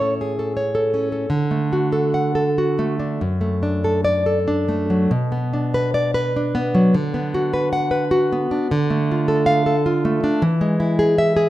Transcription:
0.00 1.25 A2 medium
0.00 0.57 C#4 soft
0.00 0.38 A4 soft
0.00 0.13 C#5 medium
0.21 1.29 G#4 soft
0.39 0.56 A4 soft
0.57 1.29 C#5 soft
0.75 1.11 A4 soft
0.94 1.29 C#4 soft
1.12 1.29 A4 soft
1.30 3.18 D3 medium
1.51 2.47 A3 soft
1.73 2.57 F#4 soft
1.92 2.34 A4 soft
2.14 2.49 F#5 medium
2.35 3.21 A4 soft
2.58 2.99 F#4 soft
2.79 3.22 A3 soft
3.00 3.21 D4 soft
3.21 5.06 F#2 medium
3.41 4.36 A3 soft
3.63 4.26 D4 soft
3.84 4.04 A4 soft
4.05 4.39 D5 medium
4.26 5.10 A4 soft
4.48 5.10 D4 medium
4.69 5.11 A3 soft
4.90 5.11 F#3 soft
5.11 6.90 B2 medium
5.32 6.24 B3 soft
5.54 6.35 D4 soft
5.74 5.94 B4 medium
5.94 6.14 D5 medium
6.14 6.94 B4 medium
6.36 6.95 D4 medium
6.55 6.94 B3 medium
6.75 6.94 F#3 medium
6.94 8.51 D3 medium
7.14 7.91 B3 soft
7.34 8.10 F#4 medium
7.54 7.72 B4 medium
7.73 8.04 F#5 medium
7.91 8.69 B4 medium
8.11 8.70 F#4 medium
8.32 8.71 B3 medium
8.51 8.70 D4 medium
8.71 10.23 D3 medium
8.90 9.74 A3 soft
9.11 9.85 F4 medium
9.28 9.65 A4 medium
9.46 9.76 F5 medium
9.66 10.42 A4 medium
9.86 10.42 F4 medium
10.05 10.42 A3 medium
10.24 10.42 D4 medium
10.42 11.49 E3 medium
10.61 11.47 G#3 soft
10.80 11.18 E4 medium
10.99 11.35 G#4 medium
11.18 11.48 E5 medium
11.36 11.49 G#4 medium

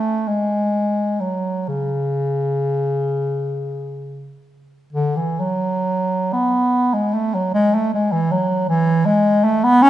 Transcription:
0.00 0.30 A3 medium
0.28 1.22 G#3 medium
1.21 1.70 F#3 medium
1.69 4.38 C#3 medium
4.93 5.18 D3 medium
5.17 5.41 E3 medium
5.39 6.35 F#3 medium
6.33 6.95 B3 medium
6.94 7.16 G#3 medium
7.14 7.36 A3 medium
7.35 7.53 F#3 medium
7.54 7.76 G#3 medium
7.75 7.94 A3 medium
7.94 8.14 G#3 medium
8.12 8.33 E3 medium
8.32 8.68 F#3 medium
8.69 9.07 E3 medium
9.06 9.46 G#3 loud
9.44 9.66 A3 medium
9.64 9.84 B3 loud
9.82 9.90 C#4 loud

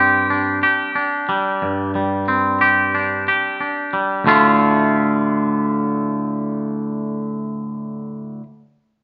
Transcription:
0.00 0.62 G2 medium
0.00 0.96 G3 soft
0.00 1.29 C4 soft
0.00 0.62 G4 soft
0.30 0.94 D4 soft
0.63 2.28 G4 soft
0.95 2.61 D4 soft
1.29 1.94 G3 soft
1.62 3.28 G2 soft
1.95 3.61 G3 soft
2.28 3.94 C4 soft
2.61 3.27 G4 soft
2.94 3.59 D4 soft
3.28 4.27 G4 soft
3.60 4.27 D4 soft
3.93 4.26 G3 soft
4.24 8.41 D2 medium
4.24 8.42 A2 medium
4.24 8.42 D3 medium
4.24 8.43 A3 medium
4.24 8.43 F4 medium

